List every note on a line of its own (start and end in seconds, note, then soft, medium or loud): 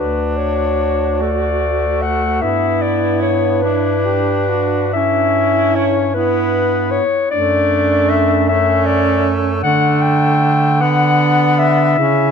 0.00 2.38 D2 soft
0.00 1.22 D4 soft
0.00 2.43 F#4 soft
0.00 0.38 B4 medium
0.37 1.23 C#5 soft
1.21 2.44 A3 soft
1.21 2.03 D5 medium
2.02 2.43 F#5 medium
2.42 7.01 G2 soft
2.42 3.65 B3 soft
2.42 3.63 E4 soft
2.42 2.83 E5 medium
2.82 3.21 D5 medium
3.22 3.63 C#5 medium
3.61 4.97 D4 soft
3.61 4.07 E4 soft
3.61 4.93 B4 medium
4.05 4.51 G4 soft
4.49 4.94 F#4 soft
4.93 6.14 C#4 soft
4.93 5.98 E4 soft
4.93 5.77 E5 medium
5.75 6.16 C#5 medium
6.14 7.03 B3 soft
6.14 7.02 E4 medium
6.14 6.93 B4 medium
6.91 7.30 C#5 medium
7.31 9.66 F#2 medium
7.31 8.45 A3 soft
7.31 8.51 D4 soft
7.31 8.11 D5 medium
8.10 8.48 E5 medium
8.49 9.62 A3 soft
8.49 9.63 C#4 medium
8.49 8.88 E5 medium
8.86 9.37 D5 medium
9.63 11.97 D3 medium
9.63 10.83 A3 soft
9.63 10.78 D4 medium
9.63 10.03 F#5 medium
10.02 10.83 G5 medium
10.81 11.98 B3 medium
10.81 11.99 D4 medium
10.81 11.60 F#5 medium
11.59 12.31 E5 medium
11.97 12.31 C#3 medium
11.97 12.31 C#4 soft
11.97 12.31 E4 medium